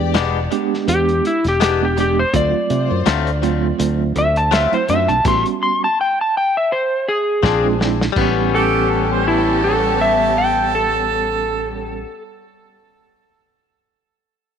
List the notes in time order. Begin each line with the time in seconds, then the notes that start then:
Already playing: G#3 B3 D4 G4 D5
0.00 E2
0.14 E1 G#3 B3 D4 G4, snare, closed hi-hat
0.52 G#3 B3 D4 G4, closed hi-hat
0.74 snare
0.88 E2 G4, closed hi-hat
1.09 closed hi-hat
1.25 E4, closed hi-hat
1.44 E1 G4, snare, closed hi-hat
1.60 G#3 B3 D4 G4, snare, closed hi-hat
1.82 G#3 B3 D4 G4
1.97 G#3 B3 D4 G4 G#4 D5, closed hi-hat
2.19 C5
2.33 D2 F#3 A3 C4 F4 F#4 C5 D5, kick, closed hi-hat
2.69 C3 F4 C5, closed hi-hat
2.91 F#2
3.06 D2 F#3 A3 C4 F4, snare, closed hi-hat
3.27 closed hi-hat
3.42 F#3 A3 C4 F4, closed hi-hat
3.80 D2, closed hi-hat
4.16 D2 E5, closed hi-hat
4.36 A5, closed hi-hat
4.51 F#3 A3 C4 F4 E5, snare, closed hi-hat
4.72 F#3 A3 C4 E4 C5, muted fingered electric bass stroke, closed hi-hat
4.88 F#2 F#3 A3 C4 D4 F4 F#4 C5 E5, closed hi-hat
5.08 B1 A5, closed hi-hat
5.24 A1 G3 B3 C#4 F#4 G4 B4 C6, kick, closed hi-hat, crash
5.46 closed hi-hat
5.63 C6
5.84 A5
6.01 G5
6.21 A5
6.37 G5
6.57 E5
6.72 C5
7.08 G#4
7.43 A#1 F3 C4 D4 G#4, kick, snare
7.64 G#3 C4 D4 F4
7.80 G#3 C4 D4 E4 G#4, snare
8.01 snare
8.12 A1 G3 C#4, kick, crash
8.17 G3 B3 C#4 G4
8.22 C#4
8.55 G4 A4
8.90 A4
9.12 C5
9.27 E4 A4
9.64 A4
10.01 E5
10.38 G5
10.75 A4